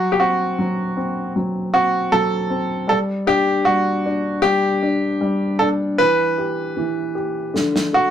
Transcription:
Already playing: grand piano F#3 F#4
0.12 grand piano G4
0.20 grand piano C4 F#4
0.59 grand piano F#3
0.97 grand piano C4
1.36 grand piano F#3
1.74 grand piano C4 F#4
2.12 grand piano F#3 A4
2.50 grand piano C4
2.88 grand piano G3 A4
3.27 grand piano D4 G4
3.65 grand piano G3 F#4
4.06 grand piano D4
4.42 grand piano G3 G4
4.82 grand piano D4
5.21 grand piano G3
5.59 grand piano D4 A4
5.98 grand piano E3 B4
6.38 grand piano G4
6.77 grand piano E3
7.15 grand piano G4
7.54 grand piano D3, snare
7.76 snare
7.93 grand piano A3 F#4

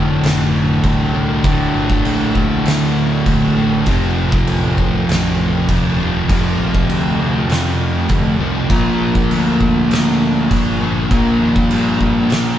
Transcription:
Already playing: picked electric bass F1, distorted electric guitar D2 A2 D3
0.21 picked electric bass F1, crash
0.26 snare
0.83 picked electric bass C2, kick, crash
1.13 distorted electric guitar D2 A2 D3
1.44 picked electric bass D1, distorted electric guitar D2 A2 D3, kick, crash
1.73 picked electric bass G1
1.90 kick
2.05 picked electric bass A#1, crash
2.35 distorted electric guitar D2 A2 D3, kick
2.65 picked electric bass D2, snare, crash
3.26 picked electric bass A#1, kick, crash
3.55 picked electric bass A1, distorted electric guitar D2 A2 D3
3.86 picked electric bass F1, distorted electric guitar F2 C3 F3, kick, crash
4.32 kick
4.47 picked electric bass A1, crash
4.78 distorted electric guitar F2 C3 F3, kick
5.08 picked electric bass A1, snare, crash
5.68 picked electric bass D#1, kick, crash
5.99 distorted electric guitar F2 C3 F3
6.28 picked electric bass F1, distorted electric guitar F2 C3 F3, kick, crash
6.58 picked electric bass A#1
6.75 kick
6.88 picked electric bass D2, crash
7.19 distorted electric guitar F2 C3 F3
7.48 picked electric bass F2, crash
7.52 snare
8.09 picked electric bass D2, kick, crash
8.39 picked electric bass C2, distorted electric guitar C3 F3
8.44 distorted electric guitar F2
8.69 picked electric bass A#1, distorted electric guitar A#2 F3 A#3, kick, crash
8.74 distorted electric guitar A#3
9.15 kick
9.29 picked electric bass D2, crash
9.58 distorted electric guitar A#2 F3 A#3, kick
9.90 picked electric bass D2, snare, crash
10.51 picked electric bass G1, kick, crash
10.81 distorted electric guitar A#2 F3 A#3
11.09 picked electric bass A#1, distorted electric guitar A#2 F3 A#3, kick, crash
11.14 distorted electric guitar A#3
11.40 picked electric bass D#2
11.56 kick
11.70 picked electric bass G2, crash
12.00 distorted electric guitar A#2 F3 A#3, kick
12.30 picked electric bass A#2, snare, crash

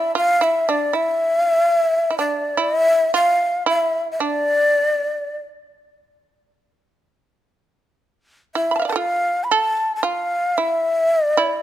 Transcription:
Already playing: shamisen E4, shakuhachi E5
0.15 shamisen F4, shakuhachi F5
0.41 shamisen E4, shakuhachi E5
0.69 shamisen D4, shakuhachi D5
0.93 shamisen E4, shakuhachi E5
2.10 shamisen E4
2.18 shamisen D4, shakuhachi D5
2.57 shamisen E4, shakuhachi E5
3.14 shamisen F4, shakuhachi F5
3.66 shamisen E4, shakuhachi E5
4.12 shakuhachi E5
4.20 shamisen D4, shakuhachi D5
8.55 shamisen E4, shakuhachi E5
8.71 shamisen B5
8.76 shamisen F5 A5
8.82 shamisen D5 E5
8.88 shamisen B4, shakuhachi A5
8.92 shamisen F4 A4
8.97 shakuhachi F5
9.44 shakuhachi B5
9.51 shamisen A4, shakuhachi A5
9.96 shakuhachi A5
10.03 shamisen F4, shakuhachi F5
10.58 shamisen E4, shakuhachi E5
11.16 shakuhachi D#5
11.29 shakuhachi D5
11.37 shamisen E4

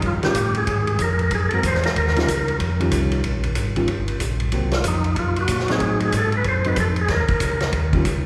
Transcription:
0.02 tonewheel organ G2, kick, ride
0.06 tonewheel organ F4
0.23 tonewheel organ G2 G4, hollow-body jazz guitar D#3 G3 C#4 F4, snare, ride
0.35 tonewheel organ A2, kick, hi-hat pedal, ride
0.54 tonewheel organ G#4, ride
0.67 tonewheel organ G#2, kick, ride
0.87 ride
0.99 tonewheel organ F2 A#4, kick, hi-hat pedal, ride
1.19 ride
1.23 tonewheel organ A#4
1.31 tonewheel organ F#2, kick, ride
1.35 tonewheel organ G#4
1.49 hollow-body jazz guitar G#3 C4, tonewheel organ A4, ride
1.53 hollow-body jazz guitar F#4 A#4, tonewheel organ A#4
1.63 tonewheel organ E2 C5, kick, hi-hat pedal, ride
1.75 snare
1.83 tonewheel organ A#4, snare, ride
1.96 tonewheel organ D#2 A#4, kick, ride
2.07 snare
2.16 hollow-body jazz guitar D#3 G3 C#4 F4, snare, ride
2.28 tonewheel organ C#2, kick, hi-hat pedal, ride
2.48 ride
2.60 tonewheel organ F2, kick, ride
2.80 hollow-body jazz guitar D#3 G3 C#4 F4, ride
2.91 tonewheel organ C2, kick, hi-hat pedal, ride
3.11 ride
3.23 tonewheel organ A#1, kick, ride
3.43 ride
3.55 tonewheel organ G#1, kick, hi-hat pedal, ride
3.76 hollow-body jazz guitar D#3 G3 C#4 F4, ride
3.88 tonewheel organ G1, kick, ride
4.08 ride
4.20 tonewheel organ A#1, kick, hi-hat pedal, ride
4.40 ride
4.52 tonewheel organ C2, hollow-body jazz guitar F#3 A#3 C4, kick, ride
4.71 tonewheel organ F4, snare, ride
4.84 tonewheel organ F2, kick, hi-hat pedal, ride
4.88 tonewheel organ D#4
5.04 ride
5.16 tonewheel organ F#2 F4, kick, ride
5.36 ride
5.41 tonewheel organ F#4
5.48 tonewheel organ A#2, kick, hi-hat pedal, ride
5.59 snare
5.68 hollow-body jazz guitar F#3 C4 D#4, snare, ride
5.72 tonewheel organ G#4
5.80 tonewheel organ A2, kick, ride
6.00 ride
6.05 tonewheel organ G#4
6.12 tonewheel organ G#2, kick, hi-hat pedal, ride
6.17 tonewheel organ A4
6.32 ride
6.37 tonewheel organ B4
6.44 tonewheel organ F#2, kick, ride
6.48 tonewheel organ C5
6.64 hollow-body jazz guitar F#3 C4 D#4, tonewheel organ B4, ride
6.76 tonewheel organ F2, kick, hi-hat pedal, ride
6.80 tonewheel organ A4
6.96 ride
7.01 tonewheel organ G#4
7.08 tonewheel organ D#2 A#4, kick, snare, ride
7.28 tonewheel organ D#2, kick, ride
7.40 tonewheel organ C#2, kick, hi-hat pedal, ride
7.60 snare, ride
7.72 tonewheel organ D#2, kick, ride
7.93 hollow-body jazz guitar D#3 G3 C#4 F4, kick, ride
8.05 tonewheel organ C#2, kick, hi-hat pedal, ride

